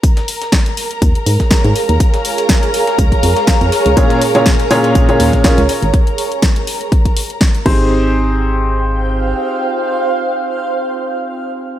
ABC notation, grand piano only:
X:1
M:4/4
L:1/16
Q:"Swing 16ths" 1/4=122
K:Ab
V:1 name="Grand piano"
z16 | z16 | [B,,DFABd]2 z [B,,DFABd] z2 [B,,DFABd]3 [B,,DFABd]3 [DFABd] z3 | z12 z2 [CEGAc]2- |
[CEGAc]16- | [CEGAc]16 |]